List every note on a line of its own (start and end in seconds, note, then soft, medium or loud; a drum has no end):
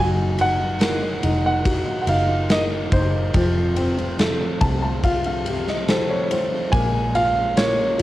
0.00 1.19 F#1 loud
0.00 0.35 F#3 medium
0.00 3.31 F#3 medium
0.00 0.36 A#3 medium
0.00 0.37 D#4 medium
0.00 0.38 F4 medium
0.36 0.59 F#3 medium
0.36 0.59 A#3 medium
0.36 0.58 D#4 medium
0.36 1.21 D#4 medium
0.36 0.57 F4 medium
0.36 ride medium
0.41 1.45 F#5 loud
0.58 0.78 A#3 soft
0.58 0.79 D#4 soft
0.58 0.79 F4 soft
0.79 1.01 F#3 medium
0.79 1.01 A#3 medium
0.79 1.01 D#4 medium
0.79 1.02 F4 medium
0.79 2.46 A#4 medium
0.79 snare loud
0.79 ride medium
1.02 1.44 A#3 medium
1.02 1.43 D#4 medium
1.23 1.83 F1 medium
1.23 2.06 D#4 medium
1.23 ride medium
1.44 1.86 A#3 soft
1.44 1.85 D#4 soft
1.44 2.00 F#5 medium
1.65 3.31 F#4 medium
1.65 kick medium
1.65 ride medium
1.85 2.06 A#3 soft
1.85 2.07 D#4 soft
1.85 2.07 F4 medium
2.02 2.28 F#3 medium
2.02 2.08 F#5 medium
2.07 2.88 F#1 medium
2.07 2.29 A#3 medium
2.07 2.91 D#4 medium
2.07 2.27 D#4 medium
2.07 2.26 F4 medium
2.07 2.52 F5 medium
2.07 ride medium
2.27 2.49 A#3 soft
2.27 2.49 D#4 soft
2.27 2.49 F4 medium
2.49 2.90 F#3 medium
2.49 2.91 A#3 medium
2.49 2.92 D#4 medium
2.49 2.93 F4 medium
2.49 3.32 A#4 medium
2.49 2.61 D#5 medium
2.49 snare loud
2.49 ride medium
2.91 3.32 F#1 medium
2.91 3.34 F#3 medium
2.91 3.35 A#3 medium
2.91 3.33 D#4 medium
2.91 3.35 D#4 medium
2.91 3.34 F4 medium
2.91 4.58 C5 medium
2.91 kick medium
2.91 ride medium
3.34 4.57 F1 loud
3.34 3.76 F2 medium
3.34 3.77 C3 medium
3.34 3.75 F3 medium
3.34 6.69 F3 medium
3.34 3.76 A3 medium
3.34 3.77 C4 medium
3.34 3.77 F4 medium
3.34 kick loud
3.34 ride medium
3.76 3.98 F3 medium
3.76 3.98 A3 medium
3.76 4.59 C4 medium
3.76 3.97 C4 medium
3.76 3.96 F4 medium
3.76 ride medium
3.98 4.18 F3 soft
3.98 4.18 A3 soft
3.98 4.19 C4 medium
3.98 4.19 F4 medium
3.98 ride soft
4.18 4.40 F2 medium
4.18 4.40 C3 medium
4.18 4.40 F3 medium
4.18 4.40 A3 medium
4.18 4.40 C4 medium
4.18 4.40 F4 loud
4.18 5.84 A4 medium
4.18 snare loud
4.18 ride medium
4.41 4.84 F3 soft
4.41 4.84 A3 medium
4.41 4.83 C4 medium
4.41 4.82 F4 medium
4.61 6.69 C2 medium
4.61 6.26 C4 medium
4.61 4.81 A5 medium
4.61 kick medium
4.61 ride medium
4.82 5.26 F3 soft
4.82 5.25 A3 medium
4.82 5.24 C4 soft
4.82 5.23 F4 medium
4.82 5.02 A5 medium
5.04 6.69 F4 medium
5.04 5.24 F5 medium
5.04 kick medium
5.04 ride medium
5.24 5.44 F3 soft
5.24 5.45 A3 medium
5.24 5.46 C4 medium
5.24 5.46 F4 medium
5.24 5.65 F5 medium
5.24 ride soft
5.46 6.70 C3 medium
5.46 5.67 F3 medium
5.46 5.67 A3 medium
5.46 5.67 C4 medium
5.46 5.65 F4 medium
5.46 ride medium
5.67 5.88 F3 soft
5.67 5.88 A3 soft
5.67 5.88 C4 medium
5.67 5.88 F4 medium
5.67 5.87 D#5 medium
5.67 snare soft
5.88 6.31 F2 medium
5.88 6.31 C3 medium
5.88 6.29 F3 medium
5.88 6.30 A3 medium
5.88 6.31 C4 medium
5.88 6.31 F4 medium
5.88 6.71 A4 medium
5.88 6.08 C5 medium
5.88 snare loud
5.88 ride medium
6.10 6.69 C#5 medium
6.30 6.51 F3 medium
6.30 6.52 A3 medium
6.30 6.52 C4 medium
6.30 6.51 F4 medium
6.30 6.72 C5 medium
6.30 ride medium
6.52 6.72 F3 soft
6.52 6.73 A3 soft
6.52 6.73 C4 soft
6.52 6.73 F4 soft
6.72 7.95 A#1 loud
6.72 7.15 A#2 medium
6.72 7.13 F3 medium
6.72 7.14 G#3 medium
6.72 7.55 A#3 medium
6.72 7.15 C#4 medium
6.72 7.16 F4 medium
6.72 7.16 G#5 loud
6.72 kick loud
6.72 ride medium
7.15 7.36 F3 medium
7.15 7.36 G#3 medium
7.15 7.36 C#4 medium
7.15 7.97 F4 medium
7.15 7.34 F4 medium
7.15 7.59 F5 medium
7.15 ride medium
7.35 7.56 G#3 soft
7.35 7.57 C#4 soft
7.35 7.57 F4 medium
7.56 7.78 A#2 medium
7.56 7.78 F3 medium
7.56 7.78 G#3 medium
7.56 8.02 A#3 medium
7.56 7.79 C#4 medium
7.56 7.77 F4 medium
7.56 8.02 C#5 medium
7.56 snare loud
7.56 ride medium
7.78 8.02 G#3 soft
7.78 8.02 C#4 soft
7.78 8.02 F4 medium
7.98 8.02 F4 medium